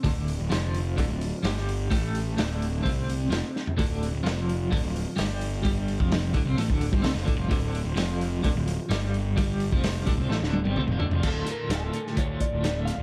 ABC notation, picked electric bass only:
X:1
M:4/4
L:1/16
Q:1/4=129
K:Dm
V:1 name="Picked electric bass" clef=bass
D,,,3 D,,, F,,,4 D,,, D,,,2 z G,,,4 | A,,,4 D,,,4 C,,4 F,,, z3 | D,,,3 D,,, F,,,4 D,,, D,,,2 z G,,,4 | G,,,3 F,,,3 D,,, C,, A,,, D,,,2 G,,, C,, F,,, D,,, F,,, |
D,,,3 D,,, F,,,4 D,,, D,,,2 z G,,,4 | G,,,3 F,,,3 D,,, C,, A,,, D,,,2 G,,, C,, F,,, D,,, F,,, | D,,,2 z2 D,,,2 z2 D,,2 z D,,,4 D,,, |]